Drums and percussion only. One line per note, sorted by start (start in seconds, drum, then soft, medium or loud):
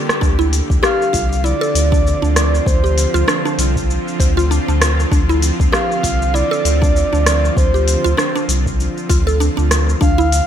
0.09 cross-stick medium
0.09 shaker soft
0.22 kick loud
0.22 shaker soft
0.41 shaker soft
0.53 closed hi-hat medium
0.53 shaker medium
0.70 kick loud
0.70 shaker soft
0.83 cross-stick medium
0.83 shaker soft
1.02 shaker soft
1.14 kick medium
1.14 closed hi-hat medium
1.14 shaker medium
1.33 shaker soft
1.46 shaker soft
1.63 shaker soft
1.75 closed hi-hat medium
1.75 shaker medium
1.92 kick loud
1.92 shaker soft
2.07 shaker soft
2.24 shaker soft
2.36 cross-stick medium
2.36 closed hi-hat medium
2.36 shaker medium
2.55 shaker soft
2.66 kick loud
2.66 shaker soft
2.85 shaker soft
2.98 closed hi-hat medium
2.98 shaker medium
3.16 shaker soft
3.28 cross-stick medium
3.28 shaker soft
3.46 shaker soft
3.59 closed hi-hat medium
3.59 shaker medium
3.76 kick medium
3.76 shaker soft
3.90 shaker soft
4.08 shaker soft
4.20 kick loud
4.20 closed hi-hat medium
4.20 shaker medium
4.39 shaker soft
4.52 shaker soft
4.69 shaker soft
4.82 cross-stick medium
4.82 closed hi-hat loud
4.82 shaker medium
5.00 shaker soft
5.12 kick loud
5.12 shaker soft
5.30 shaker soft
5.42 closed hi-hat medium
5.42 shaker medium
5.60 kick loud
5.60 shaker soft
5.73 cross-stick medium
5.73 shaker soft
5.92 shaker soft
6.03 kick medium
6.03 closed hi-hat medium
6.03 shaker medium
6.22 shaker soft
6.35 shaker soft
6.53 shaker soft
6.65 closed hi-hat medium
6.65 shaker medium
6.82 kick loud
6.82 shaker soft
6.96 shaker soft
7.14 shaker soft
7.26 cross-stick medium
7.26 closed hi-hat medium
7.26 shaker medium
7.45 shaker soft
7.57 kick loud
7.57 shaker soft
7.75 shaker soft
7.88 closed hi-hat medium
7.88 shaker medium
8.06 shaker soft
8.18 cross-stick medium
8.18 shaker soft
8.37 shaker soft
8.49 closed hi-hat medium
8.49 shaker medium
8.66 kick medium
8.66 shaker soft
8.80 shaker soft
8.98 shaker soft
9.10 kick loud
9.10 closed hi-hat medium
9.10 shaker medium
9.28 shaker soft
9.41 shaker soft
9.59 shaker soft
9.71 cross-stick medium
9.71 closed hi-hat medium
9.71 shaker medium
9.89 shaker soft
10.02 kick loud
10.02 shaker soft
10.20 shaker soft
10.32 closed hi-hat medium
10.32 shaker medium